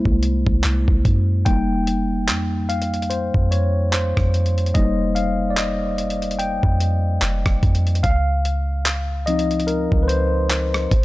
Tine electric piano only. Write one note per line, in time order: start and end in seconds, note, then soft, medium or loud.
0.00 0.19 G#3 soft
0.00 0.19 A#3 soft
0.00 0.20 E4 medium
1.45 2.03 G3 medium
1.45 2.04 A#3 medium
1.45 2.04 D#4 medium
1.45 2.24 G5 loud
2.69 2.88 F5 medium
3.10 3.53 C5 medium
3.51 3.94 C#5 medium
3.92 4.71 C5 medium
4.74 8.00 G3 medium
4.74 8.00 A#3 medium
4.74 8.00 D#4 medium
4.74 4.93 D#5 loud
5.15 5.48 F5 medium
5.50 5.57 D5 medium
5.56 6.41 D#5 medium
6.39 7.17 G5 medium
8.03 9.31 F5 loud
9.26 10.46 F3 medium
9.26 10.47 C4 medium
9.26 10.47 D#4 medium
9.26 9.69 D#5 loud
9.67 10.04 A#4 medium
10.03 10.09 B4 medium
10.08 11.05 C5 loud